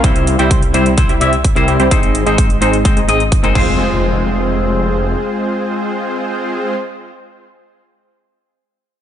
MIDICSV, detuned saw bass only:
0, 0, Header, 1, 2, 480
1, 0, Start_track
1, 0, Key_signature, -4, "minor"
1, 0, Tempo, 468750
1, 39, Time_signature, 4, 2, 24, 8
1, 9232, End_track
2, 0, Start_track
2, 0, Title_t, "Detuned saw bass"
2, 0, Program_c, 0, 39
2, 41, Note_on_c, 0, 36, 96
2, 376, Note_off_c, 0, 36, 0
2, 400, Note_on_c, 0, 36, 99
2, 736, Note_off_c, 0, 36, 0
2, 760, Note_on_c, 0, 36, 89
2, 1096, Note_off_c, 0, 36, 0
2, 1119, Note_on_c, 0, 36, 96
2, 1215, Note_off_c, 0, 36, 0
2, 1240, Note_on_c, 0, 36, 92
2, 1576, Note_off_c, 0, 36, 0
2, 1600, Note_on_c, 0, 36, 94
2, 1696, Note_off_c, 0, 36, 0
2, 1721, Note_on_c, 0, 36, 92
2, 1816, Note_off_c, 0, 36, 0
2, 1840, Note_on_c, 0, 36, 92
2, 1936, Note_off_c, 0, 36, 0
2, 1960, Note_on_c, 0, 32, 97
2, 2296, Note_off_c, 0, 32, 0
2, 2319, Note_on_c, 0, 32, 91
2, 2655, Note_off_c, 0, 32, 0
2, 2679, Note_on_c, 0, 32, 88
2, 3015, Note_off_c, 0, 32, 0
2, 3038, Note_on_c, 0, 32, 95
2, 3135, Note_off_c, 0, 32, 0
2, 3158, Note_on_c, 0, 32, 91
2, 3494, Note_off_c, 0, 32, 0
2, 3518, Note_on_c, 0, 32, 93
2, 3614, Note_off_c, 0, 32, 0
2, 3639, Note_on_c, 0, 29, 89
2, 5278, Note_off_c, 0, 29, 0
2, 9232, End_track
0, 0, End_of_file